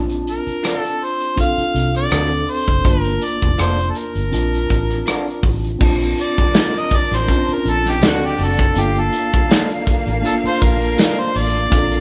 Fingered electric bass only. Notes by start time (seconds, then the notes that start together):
Already playing: A#1
0.47 muted fingered electric bass stroke
1.58 muted fingered electric bass stroke
1.75 C2
2.12 D2
2.68 F#1
2.85 G1
3.42 F1
3.58 F1
4.15 G1
4.32 A#1
4.70 A1
5.43 A1
5.81 A#1
6.91 muted fingered electric bass stroke
7.12 A1
7.49 muted fingered electric bass stroke
7.65 A#1
8.02 D2
8.39 F#1
8.76 G1
9.87 muted fingered electric bass stroke
10.07 A1
10.44 muted fingered electric bass stroke
10.62 A#1
11.35 A1
11.72 A#1